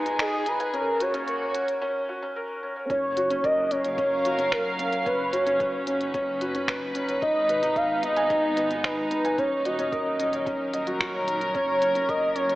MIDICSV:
0, 0, Header, 1, 6, 480
1, 0, Start_track
1, 0, Tempo, 540541
1, 654, Time_signature, 4, 2, 24, 8
1, 11146, End_track
2, 0, Start_track
2, 0, Title_t, "Soft synth lead"
2, 0, Program_c, 0, 80
2, 187, Note_on_c, 0, 68, 82
2, 425, Note_on_c, 0, 71, 90
2, 438, Note_off_c, 0, 68, 0
2, 663, Note_on_c, 0, 70, 94
2, 677, Note_off_c, 0, 71, 0
2, 903, Note_on_c, 0, 73, 104
2, 917, Note_off_c, 0, 70, 0
2, 1619, Note_off_c, 0, 73, 0
2, 2579, Note_on_c, 0, 73, 107
2, 3062, Note_on_c, 0, 75, 116
2, 3075, Note_off_c, 0, 73, 0
2, 3296, Note_on_c, 0, 73, 115
2, 3309, Note_off_c, 0, 75, 0
2, 4014, Note_on_c, 0, 70, 94
2, 4027, Note_off_c, 0, 73, 0
2, 4490, Note_off_c, 0, 70, 0
2, 4495, Note_on_c, 0, 71, 96
2, 4731, Note_on_c, 0, 73, 100
2, 4744, Note_off_c, 0, 71, 0
2, 5693, Note_off_c, 0, 73, 0
2, 6414, Note_on_c, 0, 75, 106
2, 6896, Note_on_c, 0, 77, 108
2, 6910, Note_off_c, 0, 75, 0
2, 7135, Note_on_c, 0, 75, 120
2, 7148, Note_off_c, 0, 77, 0
2, 7854, Note_on_c, 0, 71, 101
2, 7867, Note_off_c, 0, 75, 0
2, 8334, Note_on_c, 0, 73, 97
2, 8347, Note_off_c, 0, 71, 0
2, 8574, Note_on_c, 0, 75, 105
2, 8587, Note_off_c, 0, 73, 0
2, 9534, Note_off_c, 0, 75, 0
2, 10251, Note_on_c, 0, 73, 109
2, 10732, Note_on_c, 0, 75, 115
2, 10746, Note_off_c, 0, 73, 0
2, 10962, Note_off_c, 0, 75, 0
2, 10967, Note_on_c, 0, 73, 117
2, 11146, Note_off_c, 0, 73, 0
2, 11146, End_track
3, 0, Start_track
3, 0, Title_t, "Felt piano"
3, 0, Program_c, 1, 0
3, 0, Control_c, 1, 64, 127
3, 0, Note_on_c, 1, 63, 102
3, 0, Note_on_c, 1, 71, 75
3, 0, Note_on_c, 1, 75, 76
3, 0, Note_on_c, 1, 80, 75
3, 54, Note_off_c, 1, 63, 0
3, 54, Note_on_c, 1, 63, 95
3, 123, Note_off_c, 1, 63, 0
3, 175, Note_off_c, 1, 75, 0
3, 175, Note_on_c, 1, 75, 80
3, 243, Note_off_c, 1, 75, 0
3, 410, Note_on_c, 1, 63, 71
3, 526, Note_off_c, 1, 63, 0
3, 531, Note_off_c, 1, 80, 0
3, 531, Note_on_c, 1, 80, 72
3, 647, Note_off_c, 1, 80, 0
3, 651, Note_on_c, 1, 61, 94
3, 666, Control_c, 1, 64, 0
3, 669, Note_off_c, 1, 71, 0
3, 767, Note_off_c, 1, 61, 0
3, 819, Control_c, 1, 64, 127
3, 891, Note_on_c, 1, 66, 80
3, 1007, Note_off_c, 1, 66, 0
3, 1011, Note_on_c, 1, 61, 97
3, 1081, Note_off_c, 1, 61, 0
3, 1131, Note_on_c, 1, 70, 73
3, 1201, Note_off_c, 1, 70, 0
3, 1371, Note_on_c, 1, 61, 74
3, 1487, Note_off_c, 1, 61, 0
3, 1493, Note_on_c, 1, 73, 76
3, 1607, Note_off_c, 1, 73, 0
3, 1612, Note_on_c, 1, 61, 113
3, 1727, Note_off_c, 1, 61, 0
3, 1855, Note_on_c, 1, 66, 76
3, 1969, Note_off_c, 1, 66, 0
3, 1975, Note_on_c, 1, 61, 101
3, 2043, Note_off_c, 1, 61, 0
3, 2097, Note_on_c, 1, 70, 86
3, 2164, Note_off_c, 1, 70, 0
3, 2334, Note_on_c, 1, 61, 80
3, 2448, Note_off_c, 1, 61, 0
3, 2452, Note_on_c, 1, 73, 74
3, 2567, Note_off_c, 1, 73, 0
3, 2573, Note_on_c, 1, 61, 99
3, 2585, Control_c, 1, 64, 0
3, 2688, Note_off_c, 1, 61, 0
3, 2730, Control_c, 1, 64, 127
3, 2815, Note_on_c, 1, 66, 78
3, 2929, Note_off_c, 1, 66, 0
3, 2933, Note_on_c, 1, 61, 101
3, 3002, Note_off_c, 1, 61, 0
3, 3053, Note_on_c, 1, 70, 77
3, 3122, Note_off_c, 1, 70, 0
3, 3296, Note_on_c, 1, 61, 72
3, 3409, Note_off_c, 1, 61, 0
3, 3416, Note_on_c, 1, 73, 78
3, 3529, Note_off_c, 1, 73, 0
3, 3536, Note_on_c, 1, 61, 108
3, 3649, Note_off_c, 1, 61, 0
3, 3776, Note_on_c, 1, 66, 75
3, 3889, Note_off_c, 1, 66, 0
3, 3894, Note_on_c, 1, 61, 98
3, 3962, Note_off_c, 1, 61, 0
3, 4014, Note_on_c, 1, 70, 82
3, 4082, Note_off_c, 1, 70, 0
3, 4256, Note_on_c, 1, 61, 71
3, 4369, Note_off_c, 1, 61, 0
3, 4376, Note_on_c, 1, 73, 75
3, 4489, Note_off_c, 1, 73, 0
3, 4494, Note_on_c, 1, 61, 105
3, 4506, Control_c, 1, 64, 0
3, 4608, Note_off_c, 1, 61, 0
3, 4678, Control_c, 1, 64, 127
3, 4730, Note_on_c, 1, 66, 82
3, 4846, Note_off_c, 1, 66, 0
3, 4851, Note_on_c, 1, 61, 95
3, 4921, Note_off_c, 1, 61, 0
3, 4972, Note_on_c, 1, 71, 78
3, 5042, Note_off_c, 1, 71, 0
3, 5213, Note_on_c, 1, 61, 78
3, 5328, Note_off_c, 1, 61, 0
3, 5334, Note_on_c, 1, 73, 77
3, 5448, Note_off_c, 1, 73, 0
3, 5453, Note_on_c, 1, 61, 109
3, 5568, Note_off_c, 1, 61, 0
3, 5695, Note_on_c, 1, 66, 72
3, 5809, Note_off_c, 1, 66, 0
3, 5813, Note_on_c, 1, 61, 94
3, 5882, Note_off_c, 1, 61, 0
3, 5933, Note_on_c, 1, 71, 88
3, 6002, Note_off_c, 1, 71, 0
3, 6174, Note_on_c, 1, 61, 75
3, 6288, Note_off_c, 1, 61, 0
3, 6291, Note_on_c, 1, 73, 76
3, 6407, Note_off_c, 1, 73, 0
3, 6413, Note_on_c, 1, 63, 101
3, 6424, Control_c, 1, 64, 0
3, 6527, Note_off_c, 1, 63, 0
3, 6586, Control_c, 1, 64, 127
3, 6654, Note_on_c, 1, 71, 77
3, 6768, Note_off_c, 1, 71, 0
3, 6772, Note_on_c, 1, 63, 103
3, 6842, Note_off_c, 1, 63, 0
3, 6892, Note_on_c, 1, 75, 73
3, 6962, Note_off_c, 1, 75, 0
3, 7131, Note_on_c, 1, 63, 75
3, 7247, Note_off_c, 1, 63, 0
3, 7253, Note_on_c, 1, 80, 77
3, 7368, Note_off_c, 1, 80, 0
3, 7372, Note_on_c, 1, 63, 110
3, 7487, Note_off_c, 1, 63, 0
3, 7613, Note_on_c, 1, 71, 74
3, 7728, Note_off_c, 1, 71, 0
3, 7731, Note_on_c, 1, 63, 97
3, 7801, Note_off_c, 1, 63, 0
3, 7854, Note_on_c, 1, 75, 81
3, 7922, Note_off_c, 1, 75, 0
3, 8095, Note_on_c, 1, 63, 75
3, 8208, Note_off_c, 1, 63, 0
3, 8210, Note_on_c, 1, 80, 72
3, 8326, Note_off_c, 1, 80, 0
3, 8331, Note_on_c, 1, 61, 98
3, 8345, Control_c, 1, 64, 0
3, 8447, Note_off_c, 1, 61, 0
3, 8480, Control_c, 1, 64, 127
3, 8574, Note_on_c, 1, 66, 74
3, 8688, Note_off_c, 1, 66, 0
3, 8693, Note_on_c, 1, 61, 100
3, 8762, Note_off_c, 1, 61, 0
3, 8811, Note_on_c, 1, 70, 76
3, 8881, Note_off_c, 1, 70, 0
3, 9053, Note_on_c, 1, 61, 70
3, 9168, Note_off_c, 1, 61, 0
3, 9171, Note_on_c, 1, 73, 76
3, 9287, Note_off_c, 1, 73, 0
3, 9292, Note_on_c, 1, 61, 102
3, 9407, Note_off_c, 1, 61, 0
3, 9532, Note_on_c, 1, 75, 73
3, 9602, Note_off_c, 1, 75, 0
3, 9655, Note_on_c, 1, 66, 71
3, 9761, Note_off_c, 1, 66, 0
3, 9774, Note_on_c, 1, 66, 76
3, 9888, Note_off_c, 1, 66, 0
3, 9894, Note_on_c, 1, 73, 76
3, 9963, Note_off_c, 1, 73, 0
3, 10014, Note_on_c, 1, 63, 69
3, 10123, Note_off_c, 1, 63, 0
3, 10136, Note_on_c, 1, 63, 70
3, 10249, Note_off_c, 1, 63, 0
3, 10257, Note_on_c, 1, 61, 99
3, 10267, Control_c, 1, 64, 0
3, 10369, Note_off_c, 1, 61, 0
3, 10433, Control_c, 1, 64, 127
3, 10496, Note_on_c, 1, 61, 75
3, 10601, Note_off_c, 1, 61, 0
3, 10614, Note_on_c, 1, 61, 96
3, 10683, Note_off_c, 1, 61, 0
3, 10736, Note_on_c, 1, 70, 77
3, 10803, Note_off_c, 1, 70, 0
3, 10974, Note_on_c, 1, 61, 73
3, 11088, Note_off_c, 1, 61, 0
3, 11094, Note_on_c, 1, 73, 78
3, 11146, Note_off_c, 1, 73, 0
3, 11146, End_track
4, 0, Start_track
4, 0, Title_t, "String section"
4, 0, Program_c, 2, 48
4, 0, Note_on_c, 2, 47, 77
4, 0, Note_on_c, 2, 56, 77
4, 0, Note_on_c, 2, 63, 80
4, 0, Note_on_c, 2, 68, 79
4, 651, Note_off_c, 2, 56, 0
4, 653, Note_on_c, 2, 49, 82
4, 655, Note_off_c, 2, 47, 0
4, 955, Note_on_c, 2, 58, 74
4, 1088, Note_on_c, 2, 66, 71
4, 1423, Note_off_c, 2, 68, 0
4, 1612, Note_off_c, 2, 66, 0
4, 1613, Note_off_c, 2, 49, 0
4, 1614, Note_off_c, 2, 58, 0
4, 1615, Note_off_c, 2, 63, 0
4, 2572, Note_on_c, 2, 54, 82
4, 3194, Note_on_c, 2, 61, 87
4, 3404, Note_on_c, 2, 77, 91
4, 3432, Note_on_c, 2, 70, 79
4, 4491, Note_off_c, 2, 70, 0
4, 5120, Note_on_c, 2, 71, 85
4, 5262, Note_off_c, 2, 77, 0
4, 5355, Note_on_c, 2, 63, 87
4, 6413, Note_off_c, 2, 54, 0
4, 6414, Note_on_c, 2, 56, 73
4, 6898, Note_on_c, 2, 59, 85
4, 7182, Note_off_c, 2, 61, 0
4, 8332, Note_off_c, 2, 59, 0
4, 8332, Note_on_c, 2, 54, 81
4, 8333, Note_off_c, 2, 71, 0
4, 8334, Note_off_c, 2, 56, 0
4, 8889, Note_on_c, 2, 61, 78
4, 9198, Note_on_c, 2, 70, 91
4, 10889, Note_on_c, 2, 65, 75
4, 11021, Note_off_c, 2, 63, 0
4, 11146, Note_off_c, 2, 54, 0
4, 11146, Note_off_c, 2, 61, 0
4, 11146, Note_off_c, 2, 65, 0
4, 11146, Note_off_c, 2, 70, 0
4, 11146, End_track
5, 0, Start_track
5, 0, Title_t, "Detuned saw bass"
5, 0, Program_c, 3, 39
5, 2575, Note_on_c, 3, 30, 86
5, 4470, Note_off_c, 3, 30, 0
5, 4495, Note_on_c, 3, 30, 85
5, 6390, Note_off_c, 3, 30, 0
5, 6413, Note_on_c, 3, 32, 92
5, 8310, Note_off_c, 3, 32, 0
5, 8332, Note_on_c, 3, 27, 90
5, 10229, Note_off_c, 3, 27, 0
5, 10253, Note_on_c, 3, 30, 83
5, 11146, Note_off_c, 3, 30, 0
5, 11146, End_track
6, 0, Start_track
6, 0, Title_t, "Drums"
6, 53, Note_on_c, 9, 42, 40
6, 142, Note_off_c, 9, 42, 0
6, 172, Note_on_c, 9, 26, 73
6, 172, Note_on_c, 9, 42, 30
6, 261, Note_off_c, 9, 26, 0
6, 261, Note_off_c, 9, 42, 0
6, 410, Note_on_c, 9, 42, 73
6, 499, Note_off_c, 9, 42, 0
6, 533, Note_on_c, 9, 42, 44
6, 622, Note_off_c, 9, 42, 0
6, 654, Note_on_c, 9, 42, 30
6, 743, Note_off_c, 9, 42, 0
6, 892, Note_on_c, 9, 42, 76
6, 980, Note_off_c, 9, 42, 0
6, 1012, Note_on_c, 9, 42, 39
6, 1101, Note_off_c, 9, 42, 0
6, 1133, Note_on_c, 9, 42, 31
6, 1222, Note_off_c, 9, 42, 0
6, 1372, Note_on_c, 9, 42, 72
6, 1460, Note_off_c, 9, 42, 0
6, 1494, Note_on_c, 9, 42, 40
6, 1582, Note_off_c, 9, 42, 0
6, 2574, Note_on_c, 9, 36, 100
6, 2575, Note_on_c, 9, 42, 28
6, 2663, Note_off_c, 9, 36, 0
6, 2664, Note_off_c, 9, 42, 0
6, 2814, Note_on_c, 9, 42, 70
6, 2903, Note_off_c, 9, 42, 0
6, 2934, Note_on_c, 9, 42, 42
6, 3023, Note_off_c, 9, 42, 0
6, 3055, Note_on_c, 9, 36, 109
6, 3056, Note_on_c, 9, 42, 29
6, 3143, Note_off_c, 9, 36, 0
6, 3144, Note_off_c, 9, 42, 0
6, 3295, Note_on_c, 9, 42, 74
6, 3383, Note_off_c, 9, 42, 0
6, 3414, Note_on_c, 9, 42, 39
6, 3503, Note_off_c, 9, 42, 0
6, 3535, Note_on_c, 9, 36, 105
6, 3535, Note_on_c, 9, 42, 32
6, 3624, Note_off_c, 9, 36, 0
6, 3624, Note_off_c, 9, 42, 0
6, 3775, Note_on_c, 9, 42, 73
6, 3864, Note_off_c, 9, 42, 0
6, 3895, Note_on_c, 9, 42, 40
6, 3984, Note_off_c, 9, 42, 0
6, 4015, Note_on_c, 9, 26, 69
6, 4015, Note_on_c, 9, 36, 99
6, 4015, Note_on_c, 9, 42, 31
6, 4104, Note_off_c, 9, 26, 0
6, 4104, Note_off_c, 9, 36, 0
6, 4104, Note_off_c, 9, 42, 0
6, 4255, Note_on_c, 9, 42, 71
6, 4344, Note_off_c, 9, 42, 0
6, 4374, Note_on_c, 9, 42, 42
6, 4462, Note_off_c, 9, 42, 0
6, 4495, Note_on_c, 9, 36, 102
6, 4495, Note_on_c, 9, 42, 32
6, 4584, Note_off_c, 9, 36, 0
6, 4584, Note_off_c, 9, 42, 0
6, 4734, Note_on_c, 9, 42, 79
6, 4823, Note_off_c, 9, 42, 0
6, 4854, Note_on_c, 9, 42, 42
6, 4942, Note_off_c, 9, 42, 0
6, 4974, Note_on_c, 9, 36, 114
6, 4974, Note_on_c, 9, 42, 30
6, 5063, Note_off_c, 9, 36, 0
6, 5063, Note_off_c, 9, 42, 0
6, 5213, Note_on_c, 9, 42, 76
6, 5302, Note_off_c, 9, 42, 0
6, 5334, Note_on_c, 9, 42, 41
6, 5423, Note_off_c, 9, 42, 0
6, 5453, Note_on_c, 9, 36, 103
6, 5454, Note_on_c, 9, 42, 35
6, 5542, Note_off_c, 9, 36, 0
6, 5543, Note_off_c, 9, 42, 0
6, 5694, Note_on_c, 9, 42, 73
6, 5783, Note_off_c, 9, 42, 0
6, 5814, Note_on_c, 9, 42, 42
6, 5903, Note_off_c, 9, 42, 0
6, 5933, Note_on_c, 9, 36, 104
6, 5934, Note_on_c, 9, 26, 74
6, 5934, Note_on_c, 9, 42, 33
6, 6022, Note_off_c, 9, 26, 0
6, 6022, Note_off_c, 9, 36, 0
6, 6022, Note_off_c, 9, 42, 0
6, 6172, Note_on_c, 9, 42, 75
6, 6260, Note_off_c, 9, 42, 0
6, 6292, Note_on_c, 9, 42, 44
6, 6381, Note_off_c, 9, 42, 0
6, 6412, Note_on_c, 9, 36, 113
6, 6414, Note_on_c, 9, 42, 33
6, 6501, Note_off_c, 9, 36, 0
6, 6503, Note_off_c, 9, 42, 0
6, 6653, Note_on_c, 9, 42, 77
6, 6742, Note_off_c, 9, 42, 0
6, 6774, Note_on_c, 9, 42, 46
6, 6863, Note_off_c, 9, 42, 0
6, 6891, Note_on_c, 9, 36, 117
6, 6892, Note_on_c, 9, 42, 33
6, 6980, Note_off_c, 9, 36, 0
6, 6981, Note_off_c, 9, 42, 0
6, 7131, Note_on_c, 9, 42, 77
6, 7220, Note_off_c, 9, 42, 0
6, 7251, Note_on_c, 9, 42, 41
6, 7340, Note_off_c, 9, 42, 0
6, 7371, Note_on_c, 9, 42, 37
6, 7372, Note_on_c, 9, 36, 106
6, 7460, Note_off_c, 9, 42, 0
6, 7461, Note_off_c, 9, 36, 0
6, 7610, Note_on_c, 9, 42, 82
6, 7699, Note_off_c, 9, 42, 0
6, 7731, Note_on_c, 9, 42, 41
6, 7820, Note_off_c, 9, 42, 0
6, 7851, Note_on_c, 9, 36, 101
6, 7852, Note_on_c, 9, 26, 72
6, 7852, Note_on_c, 9, 42, 31
6, 7940, Note_off_c, 9, 36, 0
6, 7941, Note_off_c, 9, 26, 0
6, 7941, Note_off_c, 9, 42, 0
6, 8090, Note_on_c, 9, 42, 77
6, 8178, Note_off_c, 9, 42, 0
6, 8211, Note_on_c, 9, 42, 42
6, 8300, Note_off_c, 9, 42, 0
6, 8331, Note_on_c, 9, 36, 108
6, 8333, Note_on_c, 9, 42, 30
6, 8420, Note_off_c, 9, 36, 0
6, 8421, Note_off_c, 9, 42, 0
6, 8572, Note_on_c, 9, 42, 77
6, 8661, Note_off_c, 9, 42, 0
6, 8692, Note_on_c, 9, 42, 43
6, 8781, Note_off_c, 9, 42, 0
6, 8812, Note_on_c, 9, 36, 115
6, 8815, Note_on_c, 9, 42, 33
6, 8901, Note_off_c, 9, 36, 0
6, 8903, Note_off_c, 9, 42, 0
6, 9054, Note_on_c, 9, 42, 77
6, 9143, Note_off_c, 9, 42, 0
6, 9173, Note_on_c, 9, 42, 43
6, 9262, Note_off_c, 9, 42, 0
6, 9293, Note_on_c, 9, 36, 107
6, 9296, Note_on_c, 9, 42, 34
6, 9382, Note_off_c, 9, 36, 0
6, 9384, Note_off_c, 9, 42, 0
6, 9533, Note_on_c, 9, 42, 78
6, 9622, Note_off_c, 9, 42, 0
6, 9652, Note_on_c, 9, 42, 41
6, 9741, Note_off_c, 9, 42, 0
6, 9773, Note_on_c, 9, 26, 72
6, 9773, Note_on_c, 9, 36, 104
6, 9773, Note_on_c, 9, 42, 32
6, 9862, Note_off_c, 9, 26, 0
6, 9862, Note_off_c, 9, 36, 0
6, 9862, Note_off_c, 9, 42, 0
6, 10014, Note_on_c, 9, 42, 75
6, 10103, Note_off_c, 9, 42, 0
6, 10134, Note_on_c, 9, 42, 45
6, 10223, Note_off_c, 9, 42, 0
6, 10254, Note_on_c, 9, 36, 103
6, 10254, Note_on_c, 9, 42, 31
6, 10342, Note_off_c, 9, 36, 0
6, 10343, Note_off_c, 9, 42, 0
6, 10495, Note_on_c, 9, 42, 72
6, 10584, Note_off_c, 9, 42, 0
6, 10614, Note_on_c, 9, 42, 41
6, 10703, Note_off_c, 9, 42, 0
6, 10734, Note_on_c, 9, 36, 109
6, 10735, Note_on_c, 9, 42, 31
6, 10823, Note_off_c, 9, 36, 0
6, 10823, Note_off_c, 9, 42, 0
6, 10973, Note_on_c, 9, 42, 68
6, 11062, Note_off_c, 9, 42, 0
6, 11095, Note_on_c, 9, 42, 40
6, 11146, Note_off_c, 9, 42, 0
6, 11146, End_track
0, 0, End_of_file